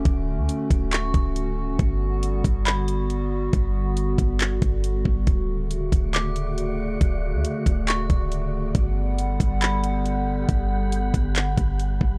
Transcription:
Already playing: D3 A3 C#4 F#4
0.05 D1, kick, closed hi-hat
0.38 D2
0.49 closed hi-hat
0.71 D1, kick, closed hi-hat
0.92 C#6, clap, closed hi-hat
1.14 C#1, kick, closed hi-hat
1.36 closed hi-hat
1.79 G1 D3 G3 B3, kick, closed hi-hat
2.23 closed hi-hat
2.44 G1, kick, closed hi-hat
2.66 B5, clap, closed hi-hat
2.88 closed hi-hat
3.10 closed hi-hat
3.53 G1, kick, closed hi-hat
3.97 closed hi-hat
4.18 G1, kick, closed hi-hat
4.40 clap, closed hi-hat
4.62 G1, kick, closed hi-hat
4.84 closed hi-hat
5.05 G1, kick
5.27 D1 C#3 A3 F#4 D5 C#7, kick, closed hi-hat
5.71 closed hi-hat
5.92 D1, kick, closed hi-hat
6.14 D6, clap, closed hi-hat
6.36 closed hi-hat
6.58 closed hi-hat
7.01 D1, kick, closed hi-hat
7.34 D2
7.45 closed hi-hat
7.66 D1, kick, closed hi-hat
7.88 C#6, clap, closed hi-hat
8.10 C#1, kick, closed hi-hat
8.32 closed hi-hat
8.75 G1 D3 G3 B3 G4 F#5 B5, kick, closed hi-hat
9.19 closed hi-hat
9.40 G1, kick, closed hi-hat
9.62 B5, clap, closed hi-hat
9.84 closed hi-hat
10.06 closed hi-hat
10.49 G1, kick, closed hi-hat
10.92 closed hi-hat
11.14 G1, kick, closed hi-hat
11.36 clap, closed hi-hat
11.57 G1, kick, closed hi-hat
11.79 closed hi-hat
12.01 G1, kick

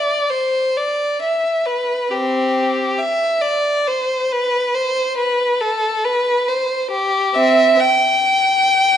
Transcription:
Already playing: D5
0.30 C5
0.77 D5
1.22 E5
1.66 B4
2.11 C4 G4
2.99 E5
3.42 D5
3.87 C5
4.32 B4
4.75 C5
5.17 B4
5.61 A4
6.04 B4
6.48 C5
6.91 G4
7.34 C4 E5
7.80 G5

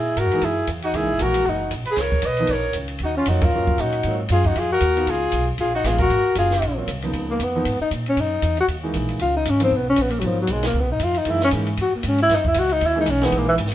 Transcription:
Already playing: A#2 E4 G#4
0.16 G#2 F#4 A#4, kick, hi-hat pedal, ride
0.25 F#2
0.31 E3 G#3 A#3 D#4, ride
0.41 F#2 E4 G#4, kick, ride
0.67 E2, kick, hi-hat pedal, ride
0.82 D#4 F#4, ride
0.93 C#2 E3 G#3 A#3 D#4 E4 G#4, kick, ride
1.03 A#1
1.12 F#1
1.19 A#1 E3 G#3 A#3 F#4 A#4, kick, hi-hat pedal, ride
1.34 ride
1.45 F#1 F#4, kick
1.49 D#4
1.71 A#1, kick, hi-hat pedal, ride
1.85 B4, muted upright bass stroke, ride
1.91 G#4
1.96 C#2 C#5, kick, snare, ride
2.01 A#4
2.12 kick
2.22 B1 D#5, kick, hi-hat pedal, ride
2.27 B4
2.37 F3 A#3 B3 D#4, ride
2.47 A#1, kick, ride
2.51 A#4 C#5
2.73 C#2, kick, hi-hat pedal, ride
2.88 ride
2.98 D#2, kick, ride
3.03 D#4 F#4
3.17 C#4 F4
3.26 F2 F#3 A#3 D#4 F4 F#4, kick, hi-hat pedal, ride
3.30 C#4
3.42 F4 A#4, kick, ride
3.54 F#3 A#3 C#4 F#4
3.67 kick
3.78 A#2 D#4 F#4, kick, hi-hat pedal, ride
3.92 ride
4.03 G#2 F#3 A#3, kick, ride
4.08 C4 F4
4.29 F#2 F4, kick, hi-hat pedal, ride
4.33 G#4
4.44 D#4, kick, ride
4.48 F#4
4.56 F2 F4 G#4, kick, ride
4.72 F#4 A#4
4.81 D#2, kick, hi-hat pedal, ride
4.97 A#3 B3 D#4 F4, ride
5.07 C#2 F4 G#4, kick, ride
5.32 B1, kick, hi-hat pedal, ride
5.58 A#1 F4 G#4, kick, ride
5.75 D#4 F#4
5.84 A1 G#3 B3 D4 F4 G#4, kick, snare, hi-hat pedal, ride
5.98 F#4 A#4, kick, ride
6.10 G#1, kick, ride
6.35 F#1 F4 G#4, kick, hi-hat pedal, ride
6.51 snare
6.62 A#1, kick, ride
6.77 F#3 A#3 C4 F4
6.88 C2, kick, hi-hat pedal, ride
7.02 C#2 F3 A#3 B3 D#4, ride
7.13 C#2, kick, ride
7.31 A#3
7.39 F2 B3, kick, hi-hat pedal, ride
7.55 F3 A#3 B3 D#4
7.65 G#2, kick, ride
7.81 D#4, muted upright bass stroke
7.91 A#2, kick, hi-hat pedal, ride
8.06 C#4, ride
8.17 F#2 D#4, kick, ride
8.42 E2, kick, hi-hat pedal, ride
8.57 F#4, ride
8.68 D#2, kick, ride
8.83 E3 G#3 A#3 D#4
8.94 A#1, kick, hi-hat pedal, ride
9.09 ride
9.19 C#2 F4, kick, ride
9.37 D#4
9.45 G#1, kick, hi-hat pedal, ride
9.50 C#4
9.60 F3 A#3 B3 C4 D#4, ride
9.71 B1, kick
9.76 B3
9.89 C#4
9.96 A#1, kick, hi-hat pedal, ride
10.02 B3
10.10 A#3, ride
10.20 G#1 F#3, kick, ride
10.24 F3 A#3 B3 D#4
10.41 F#3
10.47 B1, kick, hi-hat pedal, ride
10.52 G#3
10.63 A#3, snare, ride
10.74 C#2, kick
10.80 B1 B3
10.92 G#1 D#4
10.99 F2, kick, hi-hat pedal, ride
11.04 F4
11.14 D#4, ride
11.25 F#2 E3 G#3 A#3 D#4, kick, ride
11.31 E4
11.40 C#4, snare
11.51 G#2 E3 G#3 A#3 D#4, kick, hi-hat pedal, ride
11.66 ride
11.77 E2, kick, ride
11.82 F#4
11.95 A#3, muted upright bass stroke
12.03 G#2, kick, hi-hat pedal, ride
12.08 C#4
12.18 E4, ride
12.29 F#2, kick, snare, ride
12.35 D#4
12.45 E4, kick
12.54 C#2, kick, hi-hat pedal, ride
12.59 F#4
12.69 D#4, ride
12.81 D#2, kick, ride
12.86 E4
12.95 E3 G#3 A#3 D#4
13.00 D#4
13.06 B1, kick, hi-hat pedal, ride
13.10 C#4
13.21 E3 G#3 A#3 B3 D#4, snare, ride
13.32 A#1, kick, ride
13.38 A#3
13.49 E3
13.58 G#1, kick, hi-hat pedal, ride
13.66 snare
13.71 ride

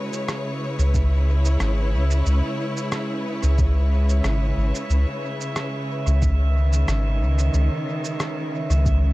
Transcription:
Already playing: C#3 G#3 F#4 B4 C#5 E5
0.00 E4
0.13 cabasa
0.28 cross-stick, cabasa
0.79 C#2, cabasa
0.94 kick, cabasa
1.45 cabasa
1.60 G#1, cross-stick, cabasa
1.93 C#2
2.11 cabasa
2.26 C#2, cabasa
2.77 cabasa
2.92 cross-stick, cabasa
3.43 C#2, cabasa
3.58 kick, cabasa
4.09 cabasa
4.24 G#1, cross-stick, cabasa
4.57 G#1
4.75 cabasa
4.90 C#2, cabasa
5.41 cabasa
5.56 cross-stick, cabasa
6.06 C#2 D#3, cabasa
6.22 kick, cabasa
6.73 cabasa
6.88 G#1, cross-stick, cabasa
7.21 C#2
7.39 cabasa
7.54 C#2, cabasa
8.05 cabasa
8.20 cross-stick, cabasa
8.70 C#2, cabasa
8.86 kick, cabasa

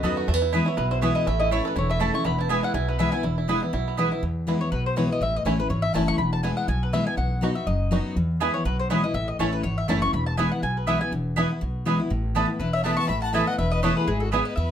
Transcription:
Already playing: F#2 B3 F#4 D#5
0.03 D#2 F#3 B3 D#4 F#4 A4 D#5 B5
0.17 F#4
0.28 E2 A3
0.34 B3
0.42 E4
0.53 E3 G#3 B3 E4 B4 G#5
0.66 B3 E4 C#5
0.77 B1 B2 B3 B4
0.91 E4 C5
1.01 E3 G#3 B3 E4 B4 C#5 G#5
1.15 E4 D#5
1.27 A1 A2 A3 E5
1.40 E4 D#5
1.51 E3 A3 C#4 E4 C#5 A5
1.65 C#4 E4 A4 B4
1.76 E1 E2 E4 C#5
1.89 A3 E5
2.00 E3 A3 C#4 E4 A4 C#5 A5
2.14 C#4 E4 C#6
2.24 E1 E2 B3 B5
2.39 E4 A5
2.49 E3 G#3 B3 E4 B4 G#5
2.63 E4 F#5
2.74 B1 B2 E4 G#5
2.88 B3 B4
2.98 E3 G#3 B3 E4 B4 E5 G#5
3.12 B3 E4 G#5
3.23 E1 E2 E4
3.38 E4
3.48 E3 G#3 B3 E4 B4 G#5
3.61 B3 E4
3.73 B1 B2 E4
3.88 B3
3.97 E3 G#3 B3 E4 B4 G#5
4.11 B3 E4
4.23 E2
4.47 E3 G#3 B3 E4
4.61 B3 E4 C#5
4.72 B1 B2 B4
4.86 C5
4.96 E3 G#3 B3 E4 C#5
5.09 B3 E4 D#5
5.21 A1 A2 E5
5.36 D#5
5.45 A1 E3 A3 C#4 E4 C#5
5.58 C#4 E4 B4
5.70 G#1 E2 C#5
5.82 E5
5.94 F#1 E3 A3 C#4 E4 A5
6.08 C#6
6.18 E1 E2 B5
6.33 A5
6.43 E3 G#3 B3 E4 G#5
6.57 F#5
6.68 B1 B2 G#5
6.83 B4
6.93 E3 G#3 B3 E4 E5
7.06 B3 E4 G#5
7.17 B1 B2 F#5
7.41 F#3 B3 D#4 F#4
7.55 D#4 F#4 E5
7.67 F#1 F#2 D#5
7.91 F#3 B3 D#4 F#4
8.16 E2
8.40 E3 G#3 B3 E4 B4 G#5
8.54 B3 E4 C#5
8.65 B1 B2 B4
8.79 C5
8.90 E3 G#3 B3 E4 B4 C#5 G#5
9.03 B3 E4 D#5
9.14 A1 A2 E5
9.28 D#5
9.39 A1 E3 A3 C#4 E4 C#5 A5
9.53 B4
9.63 G#1 E2 C#5
9.78 E5
9.88 F#1 E3 A3 C#4 E4 C#5 A5
10.02 C#4 E4 C#6
10.13 E1 E2 B5
10.26 A5
10.37 E3 G#3 B3 E4 B4 G#5
10.51 B3 E4 F#5
10.62 B1 B2 G#5
10.77 B4
10.87 E3 G#3 B3 E4 B4 E5 G#5
11.01 B3 E4 G#5
11.12 E1 E2
11.36 E3 G#3 B3 E4 B4 G#5
11.50 B3 E4
11.61 B1 B2
11.85 E3 G#3 B3 E4 B4 G#5
12.00 B3 E4
12.10 A1 A2
12.35 E3 A3 B3 E4 B4 A5
12.48 B3 E4
12.60 E1 E2 E4 B4
12.73 C#5 E5
12.84 E3 A3 B3 E4 B4 E5 A5
12.97 B3 E4 A5 C#6
13.08 A1 A2 E5 B5
13.22 F#5 A5
13.33 E3 A3 B3 E4 B4 E5 G#5 A5
13.47 B3 E4 D#5 F#5
13.58 E1 E2 B4 E5
13.72 B4 D#5
13.83 E3 A3 B3 E4 A4 B4 C#5 A5
13.97 G#4 B4
14.07 G#1 G#3 E4 G#4
14.20 F#4 A4
14.32 G#3 B3 E4 G#4 B4 G#5
14.45 B4 D#5
14.56 E2 B3 B4 E5

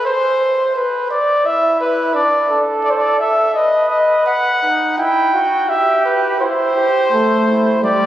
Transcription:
0.06 C5
0.75 B4
1.11 D5
1.45 E4 E5
1.81 B4
2.15 D4 D5
2.50 A4
2.84 D5
2.91 C5
2.97 D5
3.19 E5
3.54 B4 D#5
3.90 D#5
4.26 F#5
4.63 D#4
4.98 E4 G5
5.34 F#4
5.69 G4 E5
6.06 B4
6.41 E4 C5
6.76 G4
7.12 A3 A4
7.47 E4
7.83 G3 G4 D5

